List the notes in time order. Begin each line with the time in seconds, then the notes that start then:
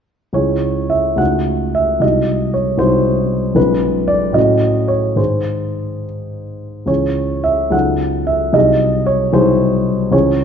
0.33 C#2 G#3 E4 G#4 C#5
0.90 E5
1.16 C#2 A3 D#4 F#4 F#5
1.75 E5
2.00 C2 G#3 D#4 F#4 D#5
2.54 C#5
2.78 C2 G#3 D#4 F#4 C5
3.55 B1 G#3 C#4 F4 B4
4.08 D5
4.32 A2 F#3 C#4 F#4 D#5
4.88 C#5
5.16 G#2 D#3 D#4 G#4 C5
6.86 C#2 E3 C#4 G#4 C#5
7.44 E5
7.70 C#2 F#3 D#4 A4 F#5
8.27 E5
8.53 C2 F#3 D#4 G#4 D#5
9.06 C#5
9.33 C2 F#3 D#4 G#4 C5
10.11 C#2 E3 C#4 G#4 C#5